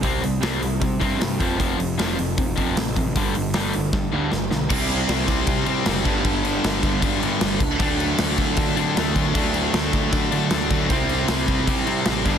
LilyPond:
<<
  \new Staff \with { instrumentName = "Distorted electric guitar" } { \clef bass \time 4/4 \key g \mixolydian \tempo 4 = 155 r1 | r1 | r1 | \key c \lydian <c g c'>2.~ <c g c'>8 <g, d g>8~ |
<g, d g>2.~ <g, d g>8 r8 | <d a d'>1 | <d a d'>1 | <c g c'>2.~ <c g c'>8 <g, d g>8 | }
  \new Staff \with { instrumentName = "Distorted electric guitar" } { \clef bass \time 4/4 \key g \mixolydian <c g c'>8 <c g>8 <c g c'>8 <c g>8 <c g>8 <c g c'>8 <c g>8 <f, c f>8 | <f, c f>8 <f, c>8 <f, c f>8 <f, c>8 <f, c>8 <f, c f>8 <f, c>8 <f, c>8 | <g, d g>8 <g, d>8 <g, d g>8 <g, d>8 <g, d>8 <g, d g>8 <g, d>8 <g, d>8 | \key c \lydian <c g c'>2~ <c g c'>8 <c g c'>8 <c g c'>8 <g, d g>8~ |
<g, d g>2 <g, d g>8 <g, d g>4 r8 | <d a d'>2~ <d a d'>8 <d a d'>8 <d a d'>4 | <d a d'>2~ <d a d'>8 <d a d'>8 <d a d'>4 | <c g c'>2~ <c g c'>8 <c g c'>8 <c g c'>8 <g, d g>8 | }
  \new Staff \with { instrumentName = "Overdriven electric guitar" } { \clef bass \time 4/4 \key g \mixolydian <c g c'>8 <c g>8 <c g c'>8 <c g>8 <c g>8 <c g c'>8 <c g>8 <f, c f>8 | <f, c f>8 <f, c>8 <f, c f>8 <f, c>8 <f, c>8 <f, c f>8 <f, c>8 <f, c>8 | <g, d g>8 <g, d>8 <g, d g>8 <g, d>8 <g, d>8 <g, d g>8 <g, d>8 <g, d>8 | \key c \lydian <c g c' e'>2.~ <c g c' e'>8 <g, d g b d'>8~ |
<g, d g b d'>2.~ <g, d g b d'>8 r8 | <d fis a d'>1 | <d fis a d'>1 | <c g c' e'>2.~ <c g c' e'>8 <g, d g b d'>8 | }
  \new Staff \with { instrumentName = "Picked electric bass" } { \clef bass \time 4/4 \key g \mixolydian c,8 c,8 c,8 c,8 c8 g,8 g,8 f,,8 | f,,8 f,,8 f,,8 f,,8 f,,8 f,,8 a,,8 a,,8 | g,,8 g,,8 g,,8 g,,8 g,8 d,8 g,,8 b,,8 | \key c \lydian c,4 c,8 c,8 c8 c8 fis,,8 g,,8 |
g,,4 g,,8 g,,8 g,8 g,8 g,,8 des,8 | d,4 d,8 d,8 d8 d8 d,8 d,8 | d,4 d,8 d,8 d8 d8 d,8 d,8 | c,4 c,8 c,8 c8 c8 a,,8 g,,8 | }
  \new DrumStaff \with { instrumentName = "Drums" } \drummode { \time 4/4 <hho bd>8 hho8 <hho sn>8 hho8 <hho bd>8 <hho bd>8 <hho sn>8 <hho bd>8 | <hho bd>8 hho8 <hho sn>8 hho8 <hho bd>8 <hho bd>8 <hho sn>8 <hho bd>8 | <hho bd>8 hho8 <hho sn>8 hho8 <bd sn>4 sn8 sn8 | <cymc bd>8 cymc8 <cymc sn>8 <cymc bd>8 <cymc bd>8 cymc8 <cymc sn>8 <cymc bd>8 |
<cymc bd>8 cymc8 <cymc sn>8 <cymc bd>8 <cymc bd>8 cymc8 <cymc sn>8 <cymc bd>8 | <cymc bd>8 cymc8 <cymc sn>8 <cymc bd>8 <cymc bd>8 cymc8 <cymc sn>8 <cymc bd>8 | <cymc bd>8 cymc8 <cymc sn>8 <cymc bd>8 <cymc bd>8 cymc8 <cymc sn>8 <cymc bd>8 | <cymc bd>8 cymc8 <cymc sn>8 <cymc bd>8 <cymc bd>8 cymc8 <cymc sn>8 <cymc bd>8 | }
>>